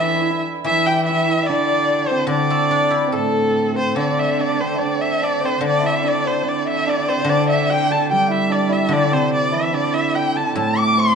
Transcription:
Already playing: E3 C4 D4 G4 A4 E5
0.01 E4
0.08 E4
0.15 E4
0.21 E4
0.30 E4
0.64 E3 E4 E5
0.68 E3
0.86 G4 G5
1.04 E5
1.09 E4
1.43 D5
1.49 D3 D4
2.06 C5
2.11 C4
2.27 D3 D5
2.31 D3 D4
2.50 A3
2.71 D4
2.90 E4
3.07 C4
3.12 A2 A3 A4
3.75 C4 C5
3.96 D3 D4 D5
4.19 E5
4.39 D4 D5
4.55 D4
4.60 C4 C5
4.74 E5
4.78 D3 D4 D5
5.00 E5
5.18 D5
5.22 D4 D5
5.41 C4 C5
5.45 C5
5.60 D3 D4 D5
5.67 D5
5.80 E4 E5
5.86 E5
6.00 D4 D5
6.08 D5
6.24 C5
6.44 D3 D4 D5
6.49 D5
6.65 E5
6.86 D4 D5
7.08 C4 C5
7.25 D3 D5
7.29 D4 D5
7.49 E5
7.70 G4 G5
7.90 A4 A5
8.09 G3 G4 G5
8.26 E4 E5 G5
8.31 E5
8.50 D4 D5
8.69 E4 E5
8.89 D3 D4 D5
8.93 D3 D5
9.05 D4
9.11 C3 C4 C5
9.34 D5
9.51 E3 E4 E5
9.72 D3 D4 D5
9.94 E4 E5
10.15 G4 G5
10.36 A4 A5
10.55 A2 A3 A4 A5
10.62 G5
10.68 A5
10.76 D5 D6
10.97 C5 C6

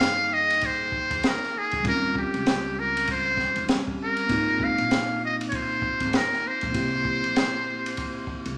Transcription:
Already playing: G2 A#3 D#4 G#4 F5 G5
0.00 snare, hi-hat pedal, ride
0.33 D#5
0.50 ride
0.61 kick, ride
0.66 C5
0.92 kick
1.11 D#2, kick, ride
1.23 snare, hi-hat pedal, ride
1.28 A#4
1.43 snare
1.58 G#4
1.71 C#2, kick, ride
1.83 D#2 G3 C4 C#4, kick, ride
1.87 F4 A#4
2.15 G4, kick
2.34 C#2, ride
2.46 snare, hi-hat pedal, ride
2.79 A#4
2.97 ride
3.07 kick, ride
3.11 C5
3.37 kick, snare
3.56 D#2, ride
3.68 G3 C4 C#4 G4, snare, hi-hat pedal, ride
3.87 kick
4.04 A#4
4.17 ride
4.27 G#1 A#3 C4 D#4, kick, ride
4.31 F4
4.60 kick
4.64 F5
4.78 A#1, ride
4.91 snare, hi-hat pedal, ride
5.25 D#5
5.41 ride
5.49 C#5, ride
5.53 C5, kick
5.82 kick
6.00 G#1, kick, ride
6.13 A#4, snare, hi-hat pedal, ride
6.33 snare
6.47 C5
6.61 A#1, kick, ride
6.71 C2 A#3 C4 E4, kick, ride
6.75 G4
7.05 kick
7.24 A#1, ride
7.36 snare, hi-hat pedal, ride
7.86 ride
7.97 kick, ride
8.27 kick
8.45 C2, ride

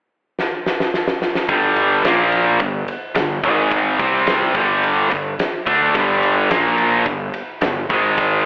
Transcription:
0.39 snare
0.66 snare
0.80 snare
0.94 snare
1.08 snare
1.22 snare
1.35 snare
1.49 G1 G2 D3 G3, kick, ride
1.76 ride
2.04 A#1 A#2 F3 A#3, snare, ride
2.32 ride
2.60 G1 G2 D3, kick, ride
2.88 ride
3.15 G1 G2 D3, snare, ride
3.44 G#1 G#2 D#3 G#3, kick, ride
3.71 kick, ride
3.99 C2 C3 G3 C4, kick, ride
4.27 snare, ride
4.55 G1 G2 D3 G3, kick, ride
4.83 ride
5.10 G1 G2 D3, ride
5.39 snare, ride
5.67 D2 D3 A3 D4, kick, ride
5.94 G1 G2 D3 G3, kick, ride
6.23 ride
6.50 A#1 A#2 F3 A#3, snare, ride
6.78 ride
7.06 G1 G2 D3, kick, ride
7.34 ride
7.61 G1 G2 D3, snare, ride
7.90 G#1 G#2 D#3 G#3, kick, ride
8.18 kick, ride

